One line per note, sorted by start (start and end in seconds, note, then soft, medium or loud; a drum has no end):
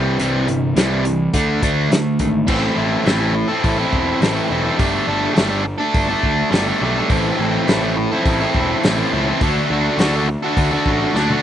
0.00 0.16 C2 medium
0.00 0.17 C3 medium
0.00 0.17 E3 loud
0.00 0.17 G3 medium
0.19 0.45 C2 medium
0.19 0.46 C3 medium
0.19 0.47 E3 medium
0.19 0.47 G3 medium
0.19 closed hi-hat medium
0.47 0.74 G1 medium
0.47 0.73 C3 medium
0.47 0.74 E3 medium
0.47 closed hi-hat medium
0.75 1.27 C2 medium
0.75 1.03 C3 medium
0.75 1.03 E3 loud
0.75 1.04 G3 medium
0.75 snare loud
0.75 closed hi-hat medium
1.04 1.31 C3 medium
1.04 1.31 E3 medium
1.04 closed hi-hat medium
1.34 1.60 D2 medium
1.34 1.61 D3 loud
1.34 1.61 A3 medium
1.34 1.61 D4 loud
1.34 kick loud
1.34 closed hi-hat medium
1.63 1.88 D2 medium
1.63 1.90 D3 medium
1.63 1.90 A3 medium
1.63 1.90 D4 medium
1.63 kick medium
1.63 closed hi-hat medium
1.90 2.17 D2 medium
1.90 2.18 D3 medium
1.90 2.18 A3 medium
1.90 snare loud
1.90 closed hi-hat medium
2.19 2.46 G#1 medium
2.19 2.46 D3 medium
2.19 2.46 A3 medium
2.19 kick medium
2.19 closed hi-hat medium
2.47 2.67 A1 medium
2.47 3.03 A2 medium
2.47 2.75 E3 loud
2.47 2.76 C4 medium
2.47 2.76 E4 loud
2.47 2.78 A4 loud
2.47 kick loud
2.47 crash medium
2.77 2.95 A1 medium
2.77 3.04 E3 medium
2.77 3.05 C4 medium
2.77 3.06 E4 medium
2.77 3.07 A4 medium
3.04 3.43 A1 medium
3.04 3.49 A2 medium
3.04 3.34 E3 loud
3.04 3.21 C4 medium
3.04 3.19 E4 loud
3.04 3.19 A4 loud
3.04 snare loud
3.04 open hi-hat soft
3.20 3.34 C4 medium
3.20 3.34 E4 medium
3.20 3.36 A4 medium
3.35 muted distorted electric guitar stroke soft
3.48 3.78 C4 soft
3.48 3.78 E4 medium
3.48 3.77 A4 medium
3.64 3.83 A1 medium
3.64 kick loud
3.64 open hi-hat soft
3.77 4.21 C4 soft
3.77 4.21 E4 medium
3.77 4.23 A4 medium
3.93 4.11 E1 medium
3.93 kick medium
4.20 4.39 A1 medium
4.20 4.64 A2 medium
4.20 4.48 E3 medium
4.20 4.36 C4 medium
4.20 4.35 E4 loud
4.20 4.34 A4 medium
4.20 snare loud
4.20 open hi-hat medium
4.34 4.50 C4 medium
4.34 4.51 E4 medium
4.34 4.52 A4 medium
4.49 4.69 E1 loud
4.49 4.77 E3 medium
4.49 4.65 C4 medium
4.49 4.63 E4 medium
4.49 4.63 A4 medium
4.63 4.78 C4 soft
4.63 4.77 E4 medium
4.63 4.80 A4 medium
4.78 4.98 G1 medium
4.78 5.07 G3 medium
4.78 5.08 A3 loud
4.78 5.08 D4 loud
4.78 5.09 A4 loud
4.78 kick loud
4.78 open hi-hat medium
5.07 5.26 G1 medium
5.07 5.33 G3 medium
5.07 5.34 A3 medium
5.07 5.34 D4 medium
5.07 5.36 A4 medium
5.33 5.74 G1 medium
5.33 5.64 G3 loud
5.33 5.51 A3 loud
5.33 5.49 D4 loud
5.33 5.49 A4 loud
5.33 open hi-hat medium
5.38 snare loud
5.50 5.65 A3 medium
5.50 5.65 D4 medium
5.50 5.65 A4 medium
5.65 muted distorted electric guitar stroke soft
5.78 6.10 A3 medium
5.78 6.09 D4 medium
5.78 6.08 A4 medium
5.94 6.13 G1 medium
5.94 kick loud
5.94 open hi-hat medium
6.08 6.51 A3 medium
6.08 6.51 D4 medium
6.08 6.52 A4 medium
6.23 6.42 D2 medium
6.23 kick medium
6.50 6.70 G1 medium
6.50 6.80 G3 medium
6.50 6.68 A3 medium
6.50 6.66 D4 medium
6.50 6.66 A4 loud
6.50 snare loud
6.50 open hi-hat medium
6.66 6.82 A3 medium
6.66 6.82 D4 medium
6.66 6.83 A4 medium
6.81 7.00 B1 medium
6.81 7.08 G3 medium
6.81 6.99 A3 medium
6.81 6.97 D4 medium
6.81 6.96 A4 medium
6.97 7.11 A3 soft
6.97 7.10 D4 medium
6.97 7.12 A4 medium
7.09 7.29 A1 medium
7.09 7.66 A2 loud
7.09 7.36 E3 loud
7.09 7.39 C4 loud
7.09 7.39 E4 loud
7.09 7.40 A4 medium
7.09 kick loud
7.09 open hi-hat medium
7.38 7.58 A1 medium
7.38 7.66 E3 medium
7.38 7.68 C4 medium
7.38 7.67 E4 medium
7.38 7.69 A4 medium
7.67 8.05 A1 medium
7.67 8.11 A2 loud
7.67 7.96 E3 loud
7.67 7.85 C4 loud
7.67 7.83 E4 loud
7.67 7.83 A4 loud
7.67 snare loud
7.67 open hi-hat medium
7.83 7.97 C4 medium
7.83 7.96 E4 medium
7.83 7.97 A4 medium
7.97 muted distorted electric guitar stroke soft
8.11 8.41 C4 medium
8.11 8.40 E4 medium
8.11 8.39 A4 medium
8.26 8.44 A1 medium
8.26 kick loud
8.26 open hi-hat soft
8.40 8.84 C4 medium
8.40 8.85 E4 medium
8.40 8.85 A4 medium
8.55 8.73 E1 medium
8.55 kick medium
8.84 9.02 A1 medium
8.84 9.27 A2 medium
8.84 9.12 E3 medium
8.84 8.99 C4 medium
8.84 8.98 E4 medium
8.84 8.96 A4 medium
8.84 snare loud
8.84 open hi-hat medium
8.97 9.13 C4 medium
8.97 9.13 E4 medium
8.97 9.14 A4 medium
9.13 9.31 C#2 loud
9.13 9.40 E3 medium
9.13 9.28 C4 medium
9.13 9.27 E4 medium
9.13 9.26 A4 medium
9.27 9.41 C4 medium
9.27 9.40 E4 medium
9.27 9.40 A4 medium
9.41 9.60 D2 medium
9.41 9.69 D3 loud
9.41 9.70 D4 loud
9.41 9.71 F#4 loud
9.41 9.72 A4 loud
9.41 kick loud
9.41 open hi-hat medium
9.70 9.89 D2 medium
9.70 9.97 D3 medium
9.70 9.99 D4 medium
9.70 10.00 F#4 medium
9.70 10.00 A4 medium
9.97 10.35 D2 medium
9.97 10.27 D3 medium
9.97 10.15 D4 loud
9.97 10.14 F#4 loud
9.97 10.13 A4 loud
9.97 snare loud
9.97 open hi-hat medium
10.14 10.27 D4 medium
10.14 10.28 F#4 medium
10.14 10.28 A4 medium
10.28 muted distorted electric guitar stroke soft
10.43 10.73 D4 medium
10.43 10.72 F#4 medium
10.43 10.70 A4 medium
10.57 10.75 D2 medium
10.57 kick loud
10.57 open hi-hat medium
10.71 11.15 D4 medium
10.71 11.16 F#4 medium
10.71 11.16 A4 medium
10.86 11.04 A1 medium
10.86 kick medium
11.14 11.33 D2 medium
11.14 11.42 D3 medium
11.14 11.32 D4 medium
11.14 11.31 F#4 loud
11.14 11.29 A4 loud
11.14 snare medium
11.29 11.42 F#4 medium
11.29 11.42 A4 medium
11.29 high tom medium
11.34 11.42 D4 medium